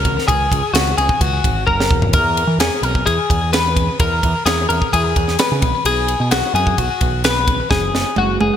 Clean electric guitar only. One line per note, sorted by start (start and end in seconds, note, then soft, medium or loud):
0.00 0.27 A#4 medium
0.28 0.73 G#4 medium
0.74 0.97 F#4 medium
0.98 1.21 G#4 medium
1.21 1.66 F#4 medium
1.67 2.13 A#4 medium
2.14 2.60 A#4 medium
2.60 2.83 G#4 medium
2.83 3.06 A#4 medium
3.06 3.53 G#4 medium
3.53 3.99 B4 medium
4.00 4.45 A#4 medium
4.46 4.68 G#4 medium
4.69 4.92 A#4 medium
4.93 5.39 G#4 medium
5.39 5.85 B4 medium
5.86 6.31 G#4 medium
6.31 6.55 F#4 medium
6.55 6.78 G#4 medium
6.78 7.24 F#4 medium
7.25 7.70 B4 medium
7.71 8.17 G#4 medium
8.18 8.41 F#4 medium
8.41 8.57 G#4 medium